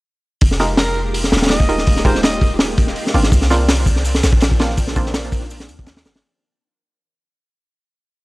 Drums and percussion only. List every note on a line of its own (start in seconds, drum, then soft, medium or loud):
0.41 kick loud
0.41 open hi-hat medium
0.51 snare soft
0.59 snare soft
0.59 open hi-hat medium
0.77 snare loud
0.77 open hi-hat medium
1.14 open hi-hat loud
1.24 snare soft
1.32 snare medium
1.32 open hi-hat medium
1.37 snare medium
1.37 open hi-hat medium
1.42 snare medium
1.42 open hi-hat medium
1.46 snare medium
1.46 open hi-hat medium
1.50 snare loud
1.50 open hi-hat loud
1.60 kick loud
1.69 open hi-hat medium
1.78 snare soft
1.87 kick loud
1.87 open hi-hat medium
1.96 snare soft
2.05 kick medium
2.05 open hi-hat medium
2.15 snare soft
2.23 snare loud
2.23 open hi-hat loud
2.33 closed hi-hat soft
2.41 kick loud
2.41 open hi-hat medium
2.59 snare loud
2.59 open hi-hat medium
2.78 kick medium
2.78 open hi-hat medium
2.87 snare soft
2.96 open hi-hat medium
3.07 snare soft
3.14 open hi-hat medium
3.23 snare soft
3.32 kick loud
3.32 open hi-hat medium
3.32 shaker medium
3.42 snare medium
3.42 closed hi-hat soft
3.50 snare soft
3.50 open hi-hat medium
3.50 shaker medium
3.69 snare loud
3.69 open hi-hat loud
3.69 shaker medium
3.86 kick loud
3.86 open hi-hat medium
3.86 shaker medium
3.96 snare soft
4.05 open hi-hat medium
4.05 shaker medium
4.15 snare medium
4.23 snare loud
4.23 snare medium
4.23 open hi-hat medium
4.23 shaker medium
4.33 kick loud
4.40 snare loud
4.40 open hi-hat medium
4.40 shaker medium
4.51 kick medium
4.51 snare soft
4.59 snare loud
4.59 open hi-hat medium
4.70 snare soft
4.77 kick loud
4.77 open hi-hat loud
4.77 shaker medium
4.88 snare medium
4.88 closed hi-hat soft
4.96 kick loud
4.96 open hi-hat medium
4.96 shaker medium
5.06 snare soft
5.14 snare loud
5.14 open hi-hat medium
5.14 shaker medium
5.24 snare soft
5.24 closed hi-hat soft
5.32 kick medium
5.32 open hi-hat medium
5.32 shaker medium
5.42 snare soft
5.51 open hi-hat medium
5.51 shaker medium
5.60 snare soft
5.69 open hi-hat medium
5.69 shaker medium
5.79 kick medium
5.86 snare loud
5.86 open hi-hat medium
5.86 shaker medium
5.96 snare loud
5.96 closed hi-hat soft
5.96 open hi-hat medium
6.05 snare loud
6.05 open hi-hat medium
6.05 shaker medium
6.15 snare loud
6.15 closed hi-hat soft
6.15 open hi-hat medium